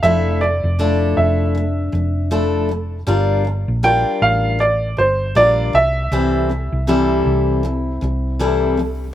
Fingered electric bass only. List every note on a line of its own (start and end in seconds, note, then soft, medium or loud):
0.03 0.60 F1 medium
0.64 1.13 F1 medium
1.17 1.89 F1 medium
1.93 3.03 F1 medium
3.07 3.64 G1 medium
3.68 4.03 A#1 medium
4.22 4.94 A1 medium
4.98 5.33 G1 medium
5.36 5.71 A#1 medium
5.74 6.09 C2 medium
6.11 6.68 C2 medium
6.72 7.21 C2 medium
7.26 7.97 C2 medium
8.02 9.11 C2 medium